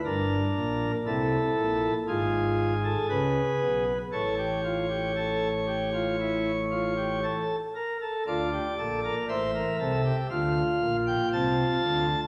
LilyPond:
<<
  \new Staff \with { instrumentName = "Pipe organ" } { \time 4/4 \key d \minor \tempo 4 = 59 << { bes'4 a'4 gis'2 | cis''2.~ cis''8 r8 | d''4 e''4 f''8. g''16 a''4 | } \\ { d'4 e'4 f'8. a'16 b'4 | a'16 g'16 f'16 g'16 a'8 g'16 f'16 e'8 f'16 g'16 a'8 bes'16 a'16 | f'16 g'16 a'16 bes'16 c''16 bes'16 a'16 g'16 f'2 | } >> }
  \new Staff \with { instrumentName = "Pipe organ" } { \clef bass \time 4/4 \key d \minor <g,, g,>8 <bes,, bes,>8 <c, c>8 <bes,, bes,>8 <gis,, gis,>4 <cis, cis>8 <b,, b,>8 | <a,, a,>2.~ <a,, a,>8 r8 | <d, d>8 <bes,, bes,>8 <a,, a,>8 <c, c>8 <d, d>8 <bes,, bes,>8 <c, c>8 <d, d>8 | }
>>